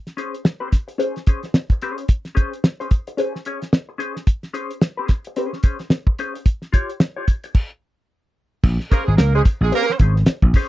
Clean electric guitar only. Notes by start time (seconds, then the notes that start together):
0.17 C#4 G#4 C5
0.45 muted clean electric guitar stroke
0.60 C#4 G#4 C5
0.70 muted clean electric guitar stroke
0.88 muted clean electric guitar stroke
0.98 C#4 G#4 C5
1.17 muted clean electric guitar stroke
1.27 C#4 G#4 C5
1.45 muted clean electric guitar stroke
1.55 muted clean electric guitar stroke
1.72 muted clean electric guitar stroke
1.82 C#4 G#4 C5
1.99 muted clean electric guitar stroke
2.35 C#4 G#4 C5
2.65 muted clean electric guitar stroke
2.80 C#4 G#4 C5
2.90 muted clean electric guitar stroke
3.08 muted clean electric guitar stroke
3.17 C#4 G#4 C5
3.35 muted clean electric guitar stroke
3.46 C#4 G#4 C#5
3.62 muted clean electric guitar stroke
3.73 muted clean electric guitar stroke
3.89 muted clean electric guitar stroke
3.98 C#4 G#4 C5
4.15 muted clean electric guitar stroke
4.54 C#4 G#4 C5
4.82 muted clean electric guitar stroke
4.97 C#4 G#4 C5
5.10 muted clean electric guitar stroke
5.27 muted clean electric guitar stroke
5.37 C#4 G#4 C5
5.54 muted clean electric guitar stroke
5.63 C#4 G#4 C5
5.80 muted clean electric guitar stroke
5.92 muted clean electric guitar stroke
6.07 muted clean electric guitar stroke
6.19 C#4 G#4 C5
6.36 muted clean electric guitar stroke
6.73 F4 G4 C#5
7.00 muted clean electric guitar stroke
7.17 F4 G4 C#5
7.44 muted clean electric guitar stroke
8.92 C#4 G#4 C5
9.19 muted clean electric guitar stroke
9.35 C#4 G#4 C5
9.62 muted clean electric guitar stroke
9.72 C#4 G#4 C5
9.90 muted clean electric guitar stroke
10.00 C#4 G#4 C5
10.17 muted clean electric guitar stroke
10.28 muted clean electric guitar stroke
10.45 muted clean electric guitar stroke
10.56 C#4 G#4 C5